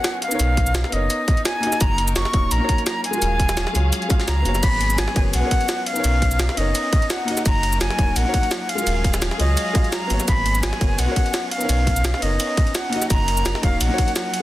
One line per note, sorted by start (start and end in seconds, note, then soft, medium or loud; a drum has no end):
0.00 0.19 F#3 medium
0.00 0.21 G#3 medium
0.00 0.19 B3 loud
0.00 3.00 C#4 medium
0.00 0.20 F#4 medium
0.00 0.21 G#4 medium
0.00 0.22 A#4 medium
0.00 0.23 C#5 loud
0.00 0.22 F#5 loud
0.04 snare loud
0.04 closed hi-hat medium
0.04 shaker soft
0.22 3.02 D#4 medium
0.22 0.95 F5 loud
0.22 closed hi-hat medium
0.28 0.88 B3 medium
0.28 0.90 D#4 medium
0.28 shaker medium
0.33 0.91 A#4 medium
0.33 0.92 C#5 loud
0.40 0.74 B1 loud
0.40 closed hi-hat loud
0.40 shaker medium
0.57 kick medium
0.57 closed hi-hat medium
0.67 shaker medium
0.75 0.84 B1 loud
0.75 snare loud
0.75 closed hi-hat medium
0.75 shaker medium
0.84 snare soft
0.89 1.09 F#1 medium
0.89 1.60 B3 medium
0.89 1.61 D#4 medium
0.89 1.45 D#5 loud
0.89 closed hi-hat medium
0.94 1.62 A#4 medium
0.94 1.63 C#5 medium
1.10 closed hi-hat loud
1.10 shaker medium
1.28 kick loud
1.28 closed hi-hat medium
1.37 closed hi-hat soft
1.45 1.83 G#5 loud
1.45 snare loud
1.45 closed hi-hat medium
1.45 shaker medium
1.60 5.83 F#3 medium
1.60 2.30 A#3 loud
1.60 2.31 D#4 loud
1.60 3.03 A#4 medium
1.60 closed hi-hat medium
1.64 2.32 F#4 medium
1.64 2.34 D#5 loud
1.72 snare soft
1.72 shaker medium
1.81 2.15 F#1 medium
1.81 2.15 A#5 loud
1.81 kick loud
1.81 closed hi-hat loud
1.81 shaker medium
1.98 closed hi-hat medium
2.08 shaker medium
2.16 2.25 F#1 medium
2.16 2.53 C#6 loud
2.16 snare loud
2.16 closed hi-hat loud
2.16 shaker medium
2.25 snare soft
2.32 2.50 D#1 medium
2.32 2.56 A#3 medium
2.32 2.58 D#4 medium
2.32 2.59 F#4 medium
2.32 2.60 C#5 medium
2.32 kick loud
2.32 closed hi-hat medium
2.51 2.60 A#1 medium
2.51 2.86 A#5 loud
2.51 closed hi-hat loud
2.51 shaker medium
2.58 3.02 A#3 loud
2.58 3.03 D#4 medium
2.62 3.04 F#4 medium
2.62 3.05 C#5 loud
2.69 kick medium
2.69 closed hi-hat medium
2.78 closed hi-hat soft
2.87 3.03 A#5 loud
2.87 snare loud
2.87 closed hi-hat loud
2.87 shaker medium
3.04 4.62 C#4 medium
3.04 4.62 G#4 medium
3.04 4.62 F5 medium
3.04 3.98 G#5 loud
3.04 closed hi-hat medium
3.11 3.71 G#3 medium
3.11 3.73 F4 medium
3.11 shaker medium
3.15 3.74 F#4 medium
3.15 3.75 A#4 loud
3.22 3.56 D#1 loud
3.22 closed hi-hat loud
3.22 shaker medium
3.40 kick medium
3.40 closed hi-hat medium
3.49 snare medium
3.49 shaker medium
3.57 3.66 D#1 medium
3.57 snare loud
3.57 closed hi-hat loud
3.57 shaker medium
3.67 snare soft
3.73 3.91 C#2 medium
3.73 4.07 G#3 medium
3.73 4.08 F4 medium
3.73 4.09 F#4 medium
3.73 4.09 C#5 medium
3.73 closed hi-hat medium
3.73 shaker soft
3.93 closed hi-hat loud
3.93 shaker medium
4.02 closed hi-hat soft
4.08 4.43 G#3 medium
4.08 4.43 F4 medium
4.08 4.43 F#4 medium
4.08 4.44 F5 loud
4.08 kick loud
4.08 closed hi-hat medium
4.08 shaker soft
4.20 snare soft
4.20 closed hi-hat soft
4.28 4.44 C#2 medium
4.28 4.65 A#5 loud
4.28 snare loud
4.28 closed hi-hat loud
4.28 shaker medium
4.42 4.62 F#1 medium
4.42 5.12 B3 loud
4.42 5.13 F#4 medium
4.42 closed hi-hat medium
4.42 shaker soft
4.46 5.15 A#3 medium
4.46 5.16 C#5 loud
4.55 snare soft
4.55 closed hi-hat soft
4.55 shaker medium
4.63 4.97 G#1 medium
4.63 5.86 G#3 medium
4.63 8.65 C#4 medium
4.63 5.86 G#4 medium
4.63 5.01 B5 loud
4.63 kick loud
4.63 closed hi-hat loud
4.63 crash medium
4.63 ride medium
4.63 shaker medium
4.81 closed hi-hat medium
4.81 ride medium
4.90 shaker medium
4.98 5.07 G#1 medium
4.98 5.16 G#5 loud
4.98 snare loud
4.98 closed hi-hat medium
4.98 ride medium
4.98 shaker soft
5.08 snare soft
5.14 5.32 F#1 medium
5.14 5.38 B3 medium
5.14 5.41 F#4 medium
5.14 5.41 A#4 medium
5.14 5.42 C#5 medium
5.14 5.23 G#5 loud
5.14 kick loud
5.14 closed hi-hat medium
5.14 ride medium
5.34 5.42 B1 medium
5.34 5.88 F#5 loud
5.34 closed hi-hat loud
5.34 ride medium
5.34 shaker medium
5.40 5.84 B3 loud
5.40 5.85 F#4 medium
5.45 5.86 A#4 medium
5.45 5.88 C#5 loud
5.51 kick medium
5.51 closed hi-hat medium
5.51 ride medium
5.61 closed hi-hat soft
5.69 snare loud
5.69 closed hi-hat loud
5.69 ride medium
5.69 shaker medium
5.86 8.66 D#4 medium
5.86 6.59 F5 loud
5.86 closed hi-hat medium
5.86 ride soft
5.93 6.52 B3 medium
5.93 6.55 D#4 medium
5.93 shaker medium
5.97 6.56 A#4 medium
5.97 6.57 C#5 loud
6.04 6.38 B1 loud
6.04 closed hi-hat loud
6.04 ride medium
6.04 shaker soft
6.22 kick medium
6.22 closed hi-hat medium
6.22 ride medium
6.31 shaker medium
6.40 6.48 B1 medium
6.40 snare loud
6.40 closed hi-hat medium
6.40 ride medium
6.40 shaker soft
6.49 snare medium
6.54 6.73 F#1 medium
6.54 7.24 B3 medium
6.54 7.25 D#4 medium
6.54 closed hi-hat medium
6.54 ride soft
6.58 7.26 A#4 medium
6.58 7.28 C#5 medium
6.58 7.12 D#5 loud
6.75 closed hi-hat loud
6.75 ride medium
6.75 shaker soft
6.93 kick loud
6.93 closed hi-hat medium
6.93 ride medium
7.02 closed hi-hat soft
7.10 7.45 F#5 loud
7.10 snare loud
7.10 closed hi-hat loud
7.10 ride medium
7.10 shaker soft
7.25 8.67 F#3 medium
7.25 7.95 A#3 loud
7.25 7.96 D#4 loud
7.25 8.68 A#4 medium
7.25 closed hi-hat medium
7.25 ride soft
7.29 7.97 F#4 loud
7.29 7.98 D#5 loud
7.37 snare soft
7.37 shaker medium
7.46 7.80 F#1 loud
7.46 7.79 A#5 loud
7.46 kick loud
7.46 closed hi-hat medium
7.46 ride medium
7.46 shaker soft
7.63 closed hi-hat medium
7.63 ride medium
7.73 shaker medium
7.81 7.89 F#1 medium
7.81 8.18 G#5 loud
7.81 snare loud
7.81 closed hi-hat medium
7.81 ride medium
7.81 shaker soft
7.90 snare soft
7.97 8.15 D#1 medium
7.97 8.21 A#3 medium
7.97 8.23 D#4 medium
7.97 8.24 F#4 medium
7.97 8.24 C#5 medium
7.97 kick loud
7.97 closed hi-hat medium
7.97 ride medium
8.16 8.25 A#1 medium
8.16 8.71 F#5 loud
8.16 closed hi-hat medium
8.16 ride medium
8.16 shaker soft
8.22 8.66 A#3 loud
8.22 8.67 D#4 medium
8.27 8.69 F#4 medium
8.27 8.70 C#5 loud
8.34 kick medium
8.34 closed hi-hat medium
8.34 ride medium
8.43 closed hi-hat soft
8.51 snare loud
8.51 closed hi-hat medium
8.51 ride medium
8.51 shaker soft
8.69 11.48 F#3 medium
8.69 14.42 C#4 medium
8.69 10.26 G#4 medium
8.69 10.26 F5 medium
8.69 9.13 F5 loud
8.69 closed hi-hat medium
8.69 ride soft
8.75 9.36 G#3 loud
8.75 9.37 F4 medium
8.75 shaker medium
8.80 9.38 F#4 medium
8.80 9.39 A#4 loud
8.87 9.21 D#1 medium
8.87 closed hi-hat medium
8.87 ride medium
8.87 shaker medium
9.04 kick medium
9.04 closed hi-hat medium
9.04 ride medium
9.14 snare medium
9.14 shaker medium
9.22 9.31 D#1 loud
9.22 snare loud
9.22 closed hi-hat medium
9.22 ride medium
9.22 shaker soft
9.31 snare soft
9.38 9.56 C#2 medium
9.38 9.72 G#3 medium
9.38 9.73 F4 medium
9.38 9.74 F#4 medium
9.38 9.74 C#5 medium
9.38 9.89 D#5 loud
9.38 closed hi-hat medium
9.38 ride medium
9.57 closed hi-hat medium
9.57 ride medium
9.57 shaker soft
9.73 10.07 G#3 medium
9.73 10.08 F4 medium
9.73 10.08 F#4 medium
9.73 10.09 F5 loud
9.73 kick loud
9.73 closed hi-hat medium
9.73 ride medium
9.84 closed hi-hat soft
9.93 10.26 A#5 loud
9.93 snare loud
9.93 closed hi-hat medium
9.93 ride medium
9.93 shaker soft
10.07 10.19 G#1 medium
10.07 10.77 B3 loud
10.07 10.78 F#4 medium
10.07 closed hi-hat medium
10.07 ride medium
10.07 shaker soft
10.12 10.80 A#3 medium
10.12 10.81 C#5 loud
10.20 snare soft
10.20 shaker medium
10.28 10.62 G#1 loud
10.28 11.50 G#3 medium
10.28 11.50 G#4 medium
10.28 10.65 B5 loud
10.28 kick loud
10.28 closed hi-hat loud
10.28 ride medium
10.28 shaker soft
10.46 closed hi-hat medium
10.46 ride medium
10.55 shaker medium
10.63 10.72 G#1 medium
10.63 11.01 G#5 loud
10.63 snare loud
10.63 closed hi-hat medium
10.63 ride medium
10.63 shaker soft
10.73 snare soft
10.79 10.97 F#1 medium
10.79 11.03 B3 medium
10.79 11.05 F#4 medium
10.79 11.06 A#4 medium
10.79 11.07 C#5 medium
10.79 kick loud
10.79 closed hi-hat medium
10.79 ride medium
10.99 11.07 B1 medium
10.99 11.53 F#5 loud
10.99 closed hi-hat medium
10.99 ride medium
10.99 shaker soft
11.05 11.49 B3 medium
11.05 11.50 F#4 medium
11.09 11.51 A#4 medium
11.09 11.52 C#5 loud
11.16 kick medium
11.16 closed hi-hat medium
11.16 ride medium
11.26 closed hi-hat soft
11.34 snare loud
11.34 closed hi-hat medium
11.34 ride medium
11.34 shaker medium
11.51 14.31 D#4 medium
11.51 12.24 F5 loud
11.51 closed hi-hat medium
11.51 ride medium
11.58 12.17 B3 medium
11.58 12.20 D#4 medium
11.58 shaker medium
11.62 12.21 A#4 medium
11.62 12.22 C#5 loud
11.69 12.03 B1 medium
11.69 closed hi-hat loud
11.69 ride medium
11.69 shaker medium
11.87 kick medium
11.87 closed hi-hat medium
11.87 ride medium
11.96 shaker medium
12.05 12.13 B1 medium
12.05 snare loud
12.05 closed hi-hat medium
12.05 ride medium
12.05 shaker medium
12.14 snare soft
12.19 12.38 F#1 medium
12.19 12.89 B3 medium
12.19 12.90 D#4 medium
12.19 12.77 D#5 loud
12.19 closed hi-hat medium
12.19 ride medium
12.23 12.91 A#4 medium
12.23 12.92 C#5 loud
12.40 closed hi-hat medium
12.40 ride medium
12.40 shaker medium
12.57 kick loud
12.57 closed hi-hat medium
12.57 ride medium
12.67 closed hi-hat soft
12.75 13.10 F#5 loud
12.75 snare loud
12.75 closed hi-hat loud
12.75 ride medium
12.75 shaker medium
12.89 14.42 F#3 medium
12.89 13.60 A#3 loud
12.89 13.61 D#4 medium
12.89 14.32 A#4 medium
12.89 closed hi-hat medium
12.89 ride medium
12.94 13.62 F#4 loud
12.94 13.63 D#5 loud
13.02 snare soft
13.02 shaker medium
13.10 13.44 F#1 loud
13.10 13.65 A#5 loud
13.10 kick loud
13.10 closed hi-hat loud
13.10 ride medium
13.10 shaker medium
13.28 closed hi-hat medium
13.28 ride medium
13.37 shaker medium
13.46 13.54 F#1 loud
13.46 snare loud
13.46 closed hi-hat medium
13.46 ride medium
13.46 shaker medium
13.55 snare soft
13.62 13.79 D#1 medium
13.62 13.86 A#3 medium
13.62 13.88 D#4 medium
13.62 13.88 F#4 medium
13.62 13.89 C#5 medium
13.62 13.82 F5 medium
13.62 kick loud
13.62 closed hi-hat medium
13.62 ride medium
13.81 13.89 A#1 medium
13.81 14.16 F#5 loud
13.81 closed hi-hat loud
13.81 ride medium
13.81 shaker medium
13.87 14.31 A#3 loud
13.87 14.32 D#4 medium
13.92 14.33 F#4 medium
13.92 14.35 C#5 loud
13.98 kick medium
13.98 closed hi-hat medium
13.98 ride medium
14.08 closed hi-hat soft
14.16 14.42 F#5 medium
14.16 snare loud
14.16 closed hi-hat loud
14.16 ride medium
14.16 shaker medium
14.34 14.42 G#4 medium
14.34 14.42 F5 medium
14.34 closed hi-hat medium
14.34 ride medium